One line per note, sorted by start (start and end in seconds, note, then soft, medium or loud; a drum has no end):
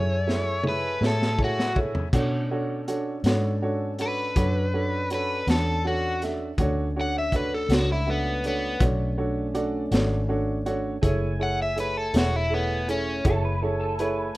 0.00 0.98 F#2 medium
0.00 0.18 E4 soft
0.00 0.18 G#4 soft
0.00 0.18 A4 soft
0.00 2.09 A4 medium
0.00 0.18 C#5 medium
0.00 0.63 C#5 medium
0.00 2.09 E5 medium
0.00 2.09 G#5 medium
0.27 0.55 E4 soft
0.27 0.55 G#4 soft
0.27 0.55 A4 soft
0.27 0.55 E5 soft
0.27 snare medium
0.63 0.92 E4 medium
0.63 0.92 G#4 soft
0.63 0.92 A4 soft
0.63 0.92 C#5 medium
0.63 mid tom medium
0.69 1.03 B4 medium
1.01 2.09 A2 medium
1.01 1.29 E4 soft
1.01 1.29 G#4 soft
1.01 1.29 A4 soft
1.01 1.29 C#5 soft
1.01 snare medium
1.06 1.40 A4 medium
1.22 snare medium
1.39 1.66 E4 soft
1.39 1.67 G#4 soft
1.39 1.67 A4 soft
1.39 1.67 C#5 medium
1.39 kick medium
1.44 1.77 F#4 medium
1.59 snare medium
1.75 2.03 E4 soft
1.75 2.03 G#4 soft
1.75 2.04 A4 soft
1.75 2.04 C#5 medium
1.75 kick medium
1.95 floor tom medium
2.13 3.21 B2 medium
2.13 6.54 C#4 medium
2.13 6.54 D4 medium
2.13 2.41 D4 medium
2.13 2.41 F#4 medium
2.13 6.54 A4 medium
2.13 2.41 A4 medium
2.13 2.41 C#5 medium
2.13 kick medium
2.13 closed hi-hat medium
2.13 crash medium
2.51 2.78 D4 medium
2.51 2.78 F#4 medium
2.51 2.79 A4 soft
2.51 2.79 C#5 medium
2.88 3.15 D4 medium
2.88 3.15 F#4 medium
2.88 3.15 A4 medium
2.88 3.15 C#5 medium
2.88 closed hi-hat medium
3.24 4.32 G#2 medium
3.24 3.53 D4 medium
3.24 3.53 F#4 medium
3.24 3.53 A4 soft
3.24 3.53 C#5 medium
3.24 snare medium
3.24 closed hi-hat medium
3.62 3.90 D4 medium
3.62 3.90 F#4 soft
3.62 3.90 A4 soft
3.62 3.90 C#5 medium
3.99 4.26 D4 soft
3.99 4.27 F#4 soft
3.99 4.27 A4 soft
3.99 5.08 B4 medium
3.99 4.27 C#5 medium
3.99 closed hi-hat medium
4.36 5.44 F#2 medium
4.36 4.64 D4 soft
4.36 4.64 F#4 soft
4.36 4.64 A4 soft
4.36 4.64 C#5 medium
4.36 kick loud
4.36 closed hi-hat medium
4.74 5.01 D4 soft
4.74 5.01 F#4 soft
4.74 5.01 A4 soft
4.74 5.01 C#5 soft
5.10 5.38 D4 soft
5.10 5.38 F#4 soft
5.10 5.38 A4 soft
5.10 5.38 C#5 medium
5.10 closed hi-hat medium
5.14 5.48 B4 medium
5.47 6.55 E2 medium
5.47 5.75 D4 soft
5.47 5.75 F#4 soft
5.47 5.75 A4 soft
5.47 5.85 A4 medium
5.47 5.75 C#5 soft
5.47 snare medium
5.47 closed hi-hat medium
5.85 6.12 D4 soft
5.85 6.12 F#4 soft
5.85 6.21 F#4 medium
5.85 6.12 A4 soft
5.85 6.12 C#5 medium
6.22 6.49 D4 soft
6.22 6.50 F#4 soft
6.22 6.50 A4 soft
6.22 6.50 E5 medium
6.22 snare soft
6.22 closed hi-hat soft
6.58 7.66 D2 medium
6.58 10.98 A3 medium
6.58 10.99 C#4 medium
6.58 10.99 D4 medium
6.58 6.87 D4 medium
6.58 6.87 F#4 medium
6.58 6.86 A4 medium
6.58 6.87 C#5 medium
6.58 kick medium
6.58 closed hi-hat medium
6.96 7.23 D4 soft
6.96 7.24 F#4 soft
6.96 7.24 A4 soft
6.96 7.24 C#5 medium
7.01 7.16 F#5 medium
7.18 7.34 E5 medium
7.32 7.61 D4 soft
7.32 7.61 F#4 soft
7.32 7.61 A4 soft
7.32 7.52 B4 medium
7.32 7.61 C#5 medium
7.32 kick medium
7.32 closed hi-hat medium
7.54 7.74 A4 medium
7.69 8.77 C#2 medium
7.69 7.97 D4 soft
7.69 7.97 F#4 soft
7.69 7.97 A4 soft
7.69 7.98 C#5 medium
7.69 snare medium
7.69 closed hi-hat medium
7.74 7.90 F#4 medium
7.92 8.08 E4 medium
8.07 8.44 B3 medium
8.07 8.34 D4 soft
8.07 8.34 F#4 soft
8.07 8.35 A4 soft
8.07 8.35 E5 medium
8.44 8.81 B3 medium
8.44 8.72 D4 soft
8.44 8.72 F#4 soft
8.44 8.72 A4 soft
8.44 8.72 C#5 soft
8.44 closed hi-hat medium
8.80 9.88 B1 medium
8.80 9.09 D4 medium
8.80 9.09 F#4 soft
8.80 9.09 A4 soft
8.80 9.09 C#5 medium
8.80 kick loud
8.80 closed hi-hat medium
9.18 9.45 D4 medium
9.18 9.46 F#4 soft
9.18 9.45 A4 medium
9.18 9.45 C#5 medium
9.54 9.82 D4 medium
9.54 9.82 F#4 medium
9.54 9.82 A4 medium
9.54 9.82 D5 medium
9.54 closed hi-hat medium
9.91 10.99 G#1 medium
9.91 10.19 D4 medium
9.91 10.19 F#4 medium
9.91 10.19 A4 medium
9.91 10.20 C#5 medium
9.91 snare medium
9.91 closed hi-hat medium
10.29 10.57 D4 medium
10.29 10.57 F#4 medium
10.29 10.57 A4 medium
10.29 10.57 C#5 medium
10.66 10.94 D4 medium
10.66 10.94 F#4 medium
10.66 10.93 A4 medium
10.66 10.94 C#5 medium
10.66 closed hi-hat medium
11.02 12.10 F#1 medium
11.02 14.37 A3 medium
11.02 14.37 E4 medium
11.02 11.30 E4 medium
11.02 11.30 G#4 medium
11.02 11.30 A4 medium
11.02 11.30 C#5 medium
11.02 14.37 G#5 medium
11.02 kick loud
11.02 closed hi-hat medium
11.39 11.67 E4 soft
11.39 11.67 G#4 soft
11.39 11.67 A4 soft
11.39 11.67 C#5 medium
11.39 11.59 F#5 medium
11.62 11.78 E5 medium
11.76 12.04 E4 soft
11.76 12.04 G#4 soft
11.76 12.04 A4 soft
11.76 11.97 B4 medium
11.76 12.04 C#5 medium
11.76 closed hi-hat medium
11.97 12.14 A4 medium
12.13 13.22 E1 medium
12.13 12.41 E4 soft
12.13 12.42 G#4 soft
12.13 12.42 A4 soft
12.13 12.42 C#5 medium
12.13 snare loud
12.13 closed hi-hat medium
12.18 12.36 F#4 medium
12.36 12.52 E4 medium
12.50 12.88 B3 medium
12.50 12.78 E4 soft
12.50 12.78 G#4 soft
12.50 12.78 A4 soft
12.50 12.79 C#5 soft
12.88 13.25 C#4 medium
12.88 13.16 E4 soft
12.88 13.16 G#4 soft
12.88 13.16 A4 soft
12.88 13.16 C#5 medium
12.88 closed hi-hat medium
13.25 14.33 F#1 medium
13.25 13.53 E4 medium
13.25 13.53 G#4 soft
13.25 13.53 A4 soft
13.25 13.43 A4 medium
13.25 13.53 C#5 medium
13.25 kick loud
13.25 closed hi-hat medium
13.44 13.61 B4 medium
13.61 13.90 E4 medium
13.61 13.90 G#4 soft
13.61 13.79 A4 medium
13.61 13.90 A4 medium
13.61 13.90 C#5 medium
13.80 13.98 A4 medium
13.99 14.27 E4 medium
13.99 14.27 G#4 medium
13.99 14.27 A4 medium
13.99 14.35 B4 medium
13.99 14.27 C#5 medium
13.99 closed hi-hat medium